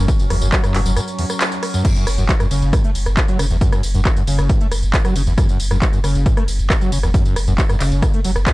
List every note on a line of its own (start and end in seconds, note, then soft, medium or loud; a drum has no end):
0.00 1.89 F#3 medium
0.00 1.89 C#4 medium
0.08 0.12 F#2 medium
0.08 kick loud
0.08 closed hi-hat medium
0.08 tambourine medium
0.19 0.25 F#1 medium
0.19 closed hi-hat medium
0.19 tambourine soft
0.30 0.41 F#1 loud
0.30 0.36 E2 medium
0.30 cross-stick medium
0.30 open hi-hat loud
0.30 ride medium
0.41 0.52 F#1 medium
0.41 0.48 F#2 medium
0.41 closed hi-hat medium
0.41 tambourine medium
0.52 0.62 F#3 medium
0.52 kick loud
0.52 clap loud
0.52 closed hi-hat medium
0.52 tambourine medium
0.64 0.76 F#2 medium
0.64 cross-stick medium
0.64 closed hi-hat medium
0.64 tambourine soft
0.74 0.85 F#1 medium
0.74 0.81 G2 medium
0.74 clap medium
0.74 open hi-hat medium
0.74 ride medium
0.86 0.96 F#1 medium
0.86 0.92 F#2 medium
0.86 closed hi-hat medium
0.86 tambourine medium
0.96 1.00 F#2 loud
0.96 cross-stick medium
0.96 closed hi-hat medium
0.96 tambourine medium
1.08 closed hi-hat medium
1.08 tambourine soft
1.19 1.25 E2 medium
1.19 open hi-hat loud
1.19 ride medium
1.30 cross-stick medium
1.30 closed hi-hat medium
1.30 tambourine medium
1.41 clap loud
1.41 closed hi-hat medium
1.41 tambourine medium
1.52 closed hi-hat medium
1.52 tambourine soft
1.63 cross-stick medium
1.63 open hi-hat loud
1.63 ride medium
1.74 1.83 F#2 loud
1.74 closed hi-hat medium
1.74 tambourine medium
1.85 kick loud
1.85 closed hi-hat loud
1.85 crash loud
1.96 2.05 F#2 medium
1.96 closed hi-hat medium
1.96 tambourine soft
2.07 2.17 F#1 loud
2.07 cross-stick medium
2.07 open hi-hat loud
2.07 ride medium
2.07 tambourine medium
2.18 2.29 F#1 medium
2.18 2.24 F#2 loud
2.18 closed hi-hat medium
2.18 tambourine soft
2.29 2.33 F#3 medium
2.29 kick loud
2.29 clap loud
2.29 closed hi-hat loud
2.29 tambourine soft
2.40 2.46 F#2 loud
2.40 cross-stick medium
2.40 closed hi-hat medium
2.40 tambourine soft
2.51 2.61 F#1 medium
2.51 2.75 C#3 medium
2.51 open hi-hat medium
2.51 ride medium
2.51 tambourine medium
2.62 2.73 F#1 medium
2.62 closed hi-hat medium
2.62 tambourine soft
2.73 2.82 F#2 loud
2.73 kick loud
2.73 cross-stick medium
2.73 closed hi-hat loud
2.73 tambourine soft
2.84 2.90 A3 medium
2.84 closed hi-hat medium
2.95 3.06 F#1 loud
2.95 open hi-hat loud
2.95 ride medium
2.95 tambourine medium
3.06 3.17 F#1 medium
3.06 cross-stick medium
3.06 closed hi-hat medium
3.06 tambourine soft
3.17 kick loud
3.17 clap loud
3.17 closed hi-hat loud
3.17 tambourine soft
3.28 3.37 F#3 loud
3.28 closed hi-hat medium
3.28 tambourine soft
3.39 3.50 F#1 loud
3.39 3.45 C#3 medium
3.39 cross-stick medium
3.39 open hi-hat medium
3.39 ride medium
3.39 tambourine medium
3.50 3.61 F#1 medium
3.50 3.56 E2 medium
3.50 closed hi-hat medium
3.50 tambourine soft
3.61 3.70 F#2 loud
3.61 kick loud
3.61 closed hi-hat loud
3.61 tambourine soft
3.72 3.81 F#2 medium
3.72 cross-stick medium
3.72 closed hi-hat medium
3.72 tambourine soft
3.83 3.94 F#1 loud
3.83 open hi-hat loud
3.83 ride medium
3.83 tambourine medium
3.94 4.05 F#1 medium
3.94 4.00 F#2 loud
3.94 closed hi-hat medium
3.94 tambourine soft
4.05 4.09 F#3 medium
4.05 kick loud
4.05 cross-stick medium
4.05 clap loud
4.05 closed hi-hat loud
4.05 tambourine soft
4.16 4.22 F#2 loud
4.16 closed hi-hat medium
4.16 tambourine soft
4.27 4.38 F#1 loud
4.27 4.51 C#3 medium
4.27 open hi-hat medium
4.27 ride medium
4.27 tambourine medium
4.38 4.49 F#1 medium
4.38 cross-stick medium
4.38 closed hi-hat medium
4.38 tambourine soft
4.49 4.59 F#2 loud
4.49 kick loud
4.49 closed hi-hat loud
4.49 tambourine soft
4.61 4.67 A3 medium
4.61 closed hi-hat medium
4.71 4.82 F#1 loud
4.71 cross-stick medium
4.71 open hi-hat loud
4.71 ride medium
4.71 tambourine medium
4.83 4.93 F#1 medium
4.83 closed hi-hat medium
4.83 tambourine soft
4.94 kick loud
4.94 clap loud
4.94 closed hi-hat loud
4.94 tambourine soft
5.05 5.14 F#3 loud
5.05 cross-stick medium
5.05 closed hi-hat medium
5.05 tambourine soft
5.16 5.26 F#1 medium
5.16 5.22 C#3 medium
5.16 open hi-hat loud
5.16 ride medium
5.16 tambourine medium
5.27 5.37 F#1 medium
5.27 5.33 E2 medium
5.27 closed hi-hat medium
5.27 tambourine soft
5.38 5.47 F#2 loud
5.38 kick loud
5.38 cross-stick medium
5.38 closed hi-hat loud
5.38 tambourine soft
5.49 5.58 F#2 medium
5.49 closed hi-hat medium
5.49 tambourine soft
5.60 5.70 F#1 loud
5.60 open hi-hat loud
5.60 ride medium
5.60 tambourine medium
5.71 5.82 F#1 medium
5.71 5.77 F#2 loud
5.71 cross-stick medium
5.71 closed hi-hat medium
5.82 5.85 F#3 medium
5.82 kick loud
5.82 clap loud
5.82 closed hi-hat loud
5.82 tambourine soft
5.93 5.99 F#2 loud
5.93 closed hi-hat medium
5.93 tambourine soft
6.04 6.14 F#1 loud
6.04 6.27 C#3 medium
6.04 cross-stick medium
6.04 open hi-hat medium
6.04 ride medium
6.04 tambourine medium
6.15 6.26 F#1 medium
6.15 closed hi-hat medium
6.15 tambourine soft
6.26 6.35 F#2 medium
6.26 kick loud
6.26 closed hi-hat loud
6.26 tambourine soft
6.37 6.43 A3 medium
6.37 cross-stick medium
6.37 closed hi-hat medium
6.48 6.59 F#1 loud
6.48 open hi-hat loud
6.48 ride medium
6.48 tambourine medium
6.59 6.70 F#1 medium
6.59 closed hi-hat medium
6.59 tambourine soft
6.70 kick loud
6.70 cross-stick medium
6.70 clap loud
6.70 closed hi-hat loud
6.70 tambourine soft
6.81 6.90 F#3 loud
6.81 closed hi-hat medium
6.81 tambourine soft
6.92 7.03 F#1 medium
6.92 6.98 C#3 medium
6.92 open hi-hat loud
6.92 ride medium
6.92 tambourine medium
7.03 7.14 F#1 medium
7.03 7.09 E2 medium
7.03 cross-stick medium
7.03 closed hi-hat medium
7.03 tambourine soft
7.14 7.23 F#2 loud
7.14 kick loud
7.14 closed hi-hat loud
7.14 tambourine soft
7.25 7.34 F#2 medium
7.25 closed hi-hat medium
7.25 tambourine soft
7.36 7.47 F#1 loud
7.36 cross-stick medium
7.36 open hi-hat loud
7.36 ride medium
7.36 tambourine medium
7.47 7.58 F#1 medium
7.47 7.53 F#2 loud
7.47 closed hi-hat medium
7.47 tambourine soft
7.58 7.62 F#3 medium
7.58 kick loud
7.58 clap loud
7.58 closed hi-hat medium
7.58 tambourine soft
7.69 7.75 F#2 loud
7.69 cross-stick medium
7.69 closed hi-hat medium
7.69 tambourine soft
7.80 7.91 F#1 loud
7.80 8.04 C#3 medium
7.80 clap medium
7.80 open hi-hat medium
7.80 ride medium
7.80 tambourine medium
7.92 8.02 F#1 medium
7.92 closed hi-hat medium
7.92 tambourine soft
8.02 8.12 F#2 loud
8.02 kick loud
8.02 cross-stick medium
8.02 closed hi-hat medium
8.02 tambourine soft
8.14 8.20 A3 medium
8.14 closed hi-hat medium
8.24 8.35 F#1 loud
8.24 8.31 F#3 medium
8.24 open hi-hat loud
8.24 ride medium
8.24 tambourine medium
8.36 8.46 F#1 medium
8.36 cross-stick medium
8.36 closed hi-hat medium
8.36 tambourine soft
8.47 8.53 F#2 medium
8.47 kick loud
8.47 clap loud
8.47 closed hi-hat loud
8.47 tambourine soft